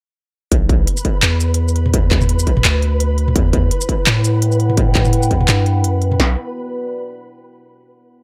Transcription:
0.52 B1 B4, kick, closed hi-hat
0.69 kick, closed hi-hat
0.87 closed hi-hat
0.97 shaker
1.05 kick, closed hi-hat
1.23 E2, clap, closed hi-hat
1.40 closed hi-hat, shaker
1.54 closed hi-hat
1.68 shaker
1.76 closed hi-hat
1.86 mid tom
1.94 kick, closed hi-hat
2.11 kick, clap, closed hi-hat
2.21 mid tom, shaker
2.29 closed hi-hat
2.39 shaker
2.47 B1, kick, closed hi-hat
2.57 mid tom
2.65 D2, clap, closed hi-hat
2.82 closed hi-hat
3.00 closed hi-hat
3.18 closed hi-hat
3.28 mid tom
3.35 E2 E4, kick, closed hi-hat
3.53 kick, closed hi-hat
3.61 B4
3.71 F#5, closed hi-hat
3.81 shaker
3.87 G5, kick, closed hi-hat
4.07 A2, clap, closed hi-hat
4.24 closed hi-hat, shaker
4.42 closed hi-hat
4.52 shaker
4.60 closed hi-hat
4.70 mid tom
4.77 kick, closed hi-hat
4.95 kick, clap, closed hi-hat
5.05 mid tom, shaker
5.13 closed hi-hat
5.23 shaker
5.31 E2, kick, closed hi-hat
5.41 mid tom
5.48 G2, clap, closed hi-hat
5.66 closed hi-hat
5.84 F#2, closed hi-hat
6.02 closed hi-hat
6.12 mid tom
6.20 B1 B3, snare
6.25 F#4
6.31 B4
6.36 D5

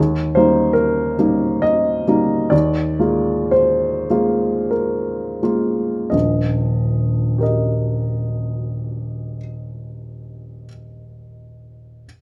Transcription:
0.00 D#2
0.35 G3 A#3 D#4 C5
0.73 A#4
1.18 G3 A#3 D#4
1.62 D#5
2.07 G3 A#3 D#4
2.50 D#2 D5
2.99 G#3 A#3 F4
3.51 C5
4.10 G#3 A#3 F4
4.71 A#4
5.43 G#3 A#3 F4
6.10 D#1 A#1 D#5
7.38 G4 A#4
7.43 D#5

